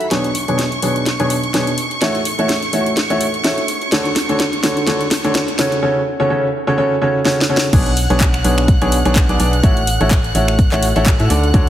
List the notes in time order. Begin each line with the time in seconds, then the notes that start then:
Already playing: B5 B6
0.01 closed hi-hat
0.11 B1 B2 D4 G#4 B4 C#5 C#6 C#7, snare, closed hi-hat
0.24 closed hi-hat
0.35 open hi-hat
0.48 B1 B2 D4 G#4 B4 C#5, closed hi-hat
0.59 snare, closed hi-hat
0.72 closed hi-hat
0.82 B1 B2 D4 G#4 B4 C#5, open hi-hat
0.96 closed hi-hat
1.06 snare, closed hi-hat
1.20 B1 B2 D4 G#4 B4 C#5, closed hi-hat
1.30 open hi-hat
1.44 closed hi-hat
1.54 B1 B2 D4 G#4 B4 C#5, snare, closed hi-hat
1.67 closed hi-hat
1.78 open hi-hat
1.91 closed hi-hat
2.02 A1 A3 E4 F#4 A4 C#5, snare, closed hi-hat
2.15 closed hi-hat
2.25 open hi-hat
2.39 A1 A3 E4 F#4 A4 C#5, closed hi-hat
2.49 snare, closed hi-hat
2.63 closed hi-hat
2.73 A1 A3 E4 F#4 A4 C#5, open hi-hat
2.86 closed hi-hat
2.97 snare, closed hi-hat
3.10 A1 A3 E4 F#4 A4 C#5, closed hi-hat
3.21 open hi-hat
3.34 closed hi-hat
3.44 A1 E4 F#4 A4 C#5, snare, closed hi-hat
3.58 closed hi-hat
3.68 open hi-hat
3.82 closed hi-hat
3.92 D2 D3 D4 F#4 A4 C#5, snare, closed hi-hat
4.05 closed hi-hat
4.16 snare, open hi-hat
4.29 D2 D3 D4 F#4 A4 C#5, closed hi-hat
4.40 snare, closed hi-hat
4.53 closed hi-hat
4.63 D2 D3 D4 F#4 A4 C#5, snare, open hi-hat
4.77 closed hi-hat
4.87 D2 D3 D4 F#4 A4 C#5, snare, closed hi-hat
5.01 closed hi-hat
5.11 snare, open hi-hat
5.24 D2 D3 D4 F#4 A4 C#5, closed hi-hat
5.35 snare, closed hi-hat
5.48 closed hi-hat
5.59 F#1 C#3 C#4 F#4 A4 C#5, snare, open hi-hat
5.72 closed hi-hat
5.83 C#3 C#4 F#4 A4 C#5
6.20 C#3 C#4 F#4 A4 C#5
6.30 C#3 C#4 F#4 A4 C#5
6.67 C#3 C#4 F#4 A4 C#5
6.78 C#3 C#4 F#4 A4 C#5
7.02 C#3 C#4 F#4 A4 C#5
7.25 C#3 C#4 F#4 A4 C#5, snare
7.41 snare
7.49 C#3 C#4 F#4 A4 C#5
7.57 snare
7.73 B1 B2 D4 G#4 B4 C#5 F#5 F#6, kick, closed hi-hat, crash
7.86 closed hi-hat
7.97 open hi-hat
8.10 B1 B2 D4 G#4 B4 C#5, closed hi-hat
8.21 kick, clap, closed hi-hat
8.34 finger snap, closed hi-hat
8.44 B1 B2 D4 G#4 B4 C#5, open hi-hat
8.58 finger snap, closed hi-hat
8.68 kick, closed hi-hat
8.82 B1 B2 D4 G#4 B4 C#5, closed hi-hat
8.92 open hi-hat
9.05 B1 B2 D4 G#4 B4 C#5, closed hi-hat
9.16 kick, clap, closed hi-hat
9.29 B1 B2 D4 G#4 B4 D5, closed hi-hat
9.40 B1 D4 G#4 B4 D5, open hi-hat
9.53 closed hi-hat
9.63 A1 A3 E4 F#4 A4 C#5, kick, closed hi-hat
9.77 closed hi-hat
9.87 open hi-hat
10.01 A1 A3 E4 F#4 A4 C#5, closed hi-hat
10.11 kick, clap, closed hi-hat
10.24 closed hi-hat
10.35 A1 A3 E4 F#4 A4 C#5, open hi-hat
10.48 finger snap, closed hi-hat
10.59 kick, closed hi-hat
10.72 A1 A3 E4 F#4 A4 C#5, clap, closed hi-hat
10.83 open hi-hat
10.96 A1 A3 E4 F#4 A4 C#5, closed hi-hat
11.06 kick, clap, closed hi-hat
11.20 A2 E4 F#4 A4 E5, closed hi-hat
11.30 D2 D3 D4 F#4 A4 D5, open hi-hat
11.44 closed hi-hat
11.54 D2 D3 D4 F#4 A4 C#5, kick, closed hi-hat